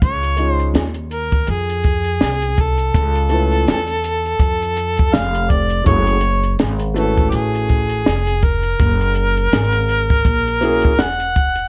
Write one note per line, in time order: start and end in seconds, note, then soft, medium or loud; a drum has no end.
0.02 0.71 C#2 medium
0.02 0.51 C#5 medium
0.02 kick loud
0.02 closed hi-hat medium
0.23 closed hi-hat medium
0.36 0.82 G#3 medium
0.36 0.83 C#4 medium
0.36 0.83 D#4 medium
0.36 0.84 F4 medium
0.36 0.84 C#5 medium
0.36 closed hi-hat medium
0.51 0.72 C5 medium
0.60 closed hi-hat soft
0.74 1.44 D#2 medium
0.74 snare loud
0.74 closed hi-hat medium
0.94 closed hi-hat medium
1.11 1.52 A#4 medium
1.11 closed hi-hat medium
1.32 kick medium
1.32 closed hi-hat soft
1.47 2.18 F2 medium
1.47 2.61 G#4 medium
1.47 closed hi-hat medium
1.70 closed hi-hat soft
1.84 kick medium
1.84 closed hi-hat medium
2.04 closed hi-hat soft
2.21 2.91 C2 medium
2.21 snare loud
2.21 closed hi-hat medium
2.42 closed hi-hat medium
2.58 5.15 A4 medium
2.58 kick medium
2.58 closed hi-hat medium
2.78 closed hi-hat soft
2.94 3.64 C#2 medium
2.94 kick loud
2.94 closed hi-hat medium
3.15 closed hi-hat medium
3.29 3.75 A3 medium
3.29 3.76 C#4 medium
3.29 3.76 E4 medium
3.29 3.77 F4 medium
3.29 3.77 B4 medium
3.29 closed hi-hat medium
3.52 closed hi-hat soft
3.68 4.37 E2 medium
3.68 snare loud
3.68 closed hi-hat medium
3.87 closed hi-hat soft
4.04 closed hi-hat medium
4.26 closed hi-hat soft
4.39 5.16 F2 medium
4.39 kick medium
4.39 closed hi-hat medium
4.62 closed hi-hat soft
4.77 closed hi-hat medium
4.97 kick medium
4.97 closed hi-hat medium
5.13 5.84 F1 medium
5.13 5.52 F5 loud
5.13 snare loud
5.13 closed hi-hat medium
5.35 closed hi-hat medium
5.50 5.86 D5 loud
5.50 kick medium
5.50 closed hi-hat medium
5.69 closed hi-hat soft
5.84 6.56 F#1 loud
5.84 6.13 A3 medium
5.84 6.13 C#4 medium
5.84 6.14 E4 medium
5.84 6.14 F#4 medium
5.84 6.15 G#4 medium
5.84 6.56 C#5 loud
5.84 kick loud
5.84 closed hi-hat medium
6.07 closed hi-hat medium
6.21 closed hi-hat medium
6.43 closed hi-hat soft
6.59 7.30 G#1 medium
6.59 snare loud
6.59 closed hi-hat medium
6.79 closed hi-hat medium
6.94 7.99 A3 medium
6.94 8.00 C#4 medium
6.94 8.00 E4 medium
6.94 8.00 F#4 medium
6.94 7.31 A4 medium
6.94 8.01 B4 medium
6.94 closed hi-hat medium
7.17 kick medium
7.17 closed hi-hat soft
7.30 8.03 A1 medium
7.30 7.36 G4 medium
7.30 closed hi-hat medium
7.35 8.45 G#4 medium
7.55 closed hi-hat medium
7.69 kick medium
7.69 closed hi-hat medium
7.89 closed hi-hat medium
8.06 8.76 F1 medium
8.06 snare loud
8.06 closed hi-hat medium
8.27 closed hi-hat medium
8.42 11.03 A#4 loud
8.42 kick medium
8.42 closed hi-hat medium
8.63 closed hi-hat soft
8.79 9.49 F#1 loud
8.79 kick loud
8.79 closed hi-hat medium
9.01 closed hi-hat medium
9.15 closed hi-hat medium
9.37 closed hi-hat soft
9.53 10.22 G#1 medium
9.53 snare loud
9.53 closed hi-hat medium
9.73 closed hi-hat medium
9.89 closed hi-hat medium
10.10 kick medium
10.10 closed hi-hat soft
10.25 11.00 A#1 medium
10.25 kick medium
10.25 closed hi-hat medium
10.48 closed hi-hat soft
10.61 10.89 A#3 medium
10.61 10.90 C#4 medium
10.61 10.90 E4 medium
10.61 10.91 F#4 medium
10.61 10.91 G#4 medium
10.61 closed hi-hat medium
10.82 kick medium
10.82 closed hi-hat soft
10.99 11.68 E1 medium
10.99 11.68 F#5 loud
10.99 snare loud
10.99 closed hi-hat medium
11.20 closed hi-hat medium
11.36 kick medium
11.36 closed hi-hat medium
11.55 closed hi-hat medium